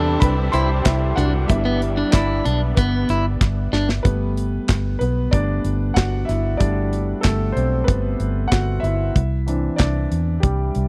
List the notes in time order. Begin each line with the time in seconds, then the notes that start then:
Already playing: E2 C3 E3 G3 C4 D4 E4 G4 A4 B4 C5 G5 A5 B5 C6
0.20 C2 B4 B5, kick, closed hi-hat
0.52 C2 E4 C5 C6, closed hi-hat
0.84 C2 E4 E5, kick, snare, clap, closed hi-hat
1.16 C2 D4 F#4 F#5, snare, closed hi-hat, floor tom
1.48 G1 G3 B3 D4 E4 E5, kick, closed hi-hat
1.65 B3
1.82 closed hi-hat
1.97 D4
2.11 G1 D4 E4 D5, kick, snare, clap, closed hi-hat
2.45 B1 D4, closed hi-hat
2.75 G1 B3 B4, kick, closed hi-hat
3.09 G1 E4, closed hi-hat
3.41 G1, kick, snare, clap
3.73 G1 D4, snare
3.89 snare
4.03 G1 G3 A3 B3 B4, kick, closed hi-hat
4.37 closed hi-hat
4.69 G1, kick, snare, clap, closed hi-hat
4.99 B1 B3 B4, closed hi-hat
5.31 G1 G3 A3 B3 D4 D5, kick, closed hi-hat
5.64 G1, closed hi-hat
5.94 G1 F#4 F#5, kick, snare, clap, closed hi-hat
6.25 G1 E4 E5, snare, closed hi-hat
6.57 G1 G3 A3 D4 D5, kick, closed hi-hat
6.93 closed hi-hat
7.21 G1 A3 A4, kick, snare, clap, closed hi-hat
7.52 B1 C4 C5
7.57 closed hi-hat
7.84 G3 A3 B3 B4, kick
7.88 G1, closed hi-hat
8.20 G1, closed hi-hat
8.48 F#4 F#5
8.52 G1, kick, snare, clap, closed hi-hat
8.80 G1 E4 E5
8.84 closed hi-hat
9.16 C2, kick, closed hi-hat
9.47 E3 C4 D4, closed hi-hat
9.76 C2 D4 D5, kick, snare, clap, closed hi-hat
10.12 E2, closed hi-hat
10.40 C2 G3 G4, kick, closed hi-hat
10.75 C2, closed hi-hat